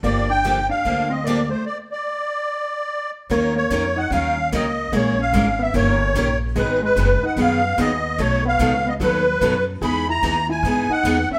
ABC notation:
X:1
M:4/4
L:1/8
Q:"Swing" 1/4=147
K:Gm
V:1 name="Accordion"
d g2 f2 e d c | d d6 z | [K:Ebm] d d2 g f2 e2 | d f2 _f d3 z |
c c2 g f2 e2 | d f2 ^d =B3 z | =b _b2 ^g2 _g2 =e |]
V:2 name="Hollow-body jazz guitar"
B, D2 D2 C B, A, | z8 | [K:Ebm] B, B,2 E D2 B,2 | B, D2 C B,3 z |
A, A,2 E C2 C2 | =A, =B,2 B, ^F,3 z | ^G =E2 E2 ^D2 _D |]
V:3 name="Steel-string acoustic guitar"
[D,F,B,DG] z [D,F,B,DG] z [D,F,B,DG] z [D,F,B,DG] z | z8 | [K:Ebm] [E,G,DEB] z [E,G,DEB] z [E,G,DEB] z [E,G,DEB] z | [_F,A,DAB] z [F,A,DAB] z [E,B,D=GB] z [E,B,DGB] z |
[E,G,CEA] z [E,G,CEA] z [E,G,CEA] z [E,G,CEA] z | [=B,,^F,=A,^D^F] z [B,,F,A,DF] z [B,,F,A,DF] z [B,,F,A,DF] z | [=E,=B,^D^G] z [E,B,DG] z [E,B,DG] z [E,B,DG] z |]
V:4 name="Steel-string acoustic guitar"
[D,F,B,DG] z [D,F,B,DG] z [D,F,B,DG] z [D,F,B,DG] z | z8 | [K:Ebm] [E,G,DEB] z [E,G,DEB] z [E,G,DEB] z [E,G,DEB] z | [_F,A,DAB] z [F,A,DAB] z [E,B,D=GB] z [E,B,DGB] z |
[E,G,CEA] z [E,G,CEA] z [E,G,CEA] z [E,G,CEA] z | [=B,,^D,^F,=B,^D=A] z [B,,D,F,B,DA] z [B,,D,F,B,DA] z [B,,D,F,B,DA] z | [=E,^G,=B,^D^G] z [E,G,B,DG] z [E,G,B,DG] z [E,G,B,DG] z |]
V:5 name="Upright bass" clef=bass
G,,,4 D,,4 | z8 | [K:Ebm] E,,2 F,,2 E,,2 D,,2 | B,,,2 A,,,2 =G,,,2 B,,,2 |
A,,,2 G,,, z G,,2 E,,2 | =B,,,2 D,,2 ^D,,2 ^F,,2 | =E,,2 ^D,,2 ^G,, z E,, z |]